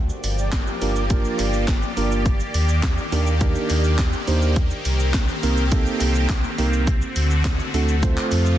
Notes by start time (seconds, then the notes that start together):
Already playing: D2 F3 A#3 G4 D5
0.09 shaker
0.24 G1, open hi-hat, shaker
0.38 shaker
0.52 kick, snare, clap, closed hi-hat, shaker
0.67 shaker
0.82 G1 A#3 D4 F4 G4 A#4, open hi-hat, shaker
0.96 shaker
1.10 A#3 D4 F4 G4 A#4, kick, closed hi-hat, shaker
1.25 shaker
1.39 G1, clap, open hi-hat, shaker
1.53 shaker
1.68 kick, snare, clap, closed hi-hat, shaker
1.82 shaker
1.97 G1 A#3 D4 F4 G4 A#4, open hi-hat, shaker
2.12 shaker
2.26 D#3 A#3, kick, closed hi-hat, shaker
2.40 shaker
2.54 D#2, open hi-hat, shaker
2.69 shaker
2.83 kick, snare, clap, closed hi-hat, shaker
2.98 shaker
3.12 D#2 A#3 D4 D#4 G4 A#4, open hi-hat, shaker
3.27 shaker
3.41 A#3 D4 D#4 G4 A#4, kick, closed hi-hat, shaker
3.55 shaker
3.70 D#2, clap, open hi-hat, shaker
3.84 shaker
3.99 kick, snare, clap, closed hi-hat, shaker
4.13 shaker
4.27 D#2 A#3 D4 D#4 G4 C5, open hi-hat, shaker
4.42 shaker
4.56 C4 G4, kick, closed hi-hat, shaker
4.71 shaker
4.85 C2, open hi-hat, shaker
5.00 shaker
5.14 kick, snare, clap, closed hi-hat, shaker
5.29 shaker
5.43 C2 A#3 C4 D#4 G4 A#4, open hi-hat, shaker
5.58 shaker
5.72 A#3 C4 D#4 G4 A4, kick, closed hi-hat, shaker
5.86 shaker
6.00 C2, clap, open hi-hat, shaker
6.15 shaker
6.29 kick, snare, clap, closed hi-hat, shaker
6.44 shaker
6.58 C2 A#3 C4 D#4 G4 A#4, open hi-hat, shaker
6.73 shaker
6.87 D3 A3 F#4, kick, closed hi-hat, shaker
7.02 shaker
7.16 D2, open hi-hat, shaker
7.31 shaker
7.45 kick, snare, clap, closed hi-hat, shaker
7.60 shaker
7.74 D2 A3 C4 D4 F#4 A4, open hi-hat, shaker
7.88 shaker
8.02 C3 F3 A3 C4 F4 A4 C5, kick, closed hi-hat, shaker
8.17 clap, shaker
8.31 F2, clap, open hi-hat, shaker
8.46 shaker